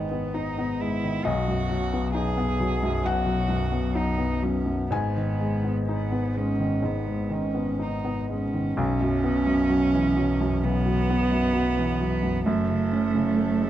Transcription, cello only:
0.00 0.36 B3 medium
0.34 0.82 D#4 medium
0.81 1.26 E4 medium
1.24 2.14 F#4 medium
2.15 3.08 G#4 medium
3.06 3.98 F#4 medium
3.97 4.45 D#4 medium
4.43 4.91 C#4 medium
4.91 5.77 B3 medium
5.89 6.39 B3 medium
6.37 6.87 C#4 medium
6.85 7.35 B3 medium
7.33 7.84 C#4 medium
7.82 8.31 D#4 medium
8.31 8.78 C#4 medium
8.80 10.65 C#4 loud
10.64 12.45 B3 loud
12.45 13.70 A3 loud

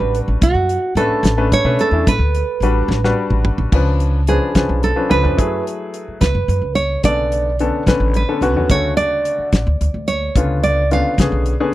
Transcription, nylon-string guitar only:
0.00 0.17 B4 medium
0.43 0.97 F#4 medium
0.97 1.48 A4 medium
1.53 1.81 C#5 medium
1.81 2.09 A4 medium
2.08 3.14 B4 medium
4.28 4.80 G#4 medium
4.84 5.10 A4 medium
5.11 5.62 B4 medium
6.21 6.73 B4 medium
6.75 7.03 C#5 medium
7.05 7.56 D5 medium
8.16 8.67 B4 medium
8.71 8.96 C#5 medium
8.97 9.49 D5 medium
10.08 10.59 C#5 medium
10.64 10.90 D5 medium
10.93 11.44 F5 medium

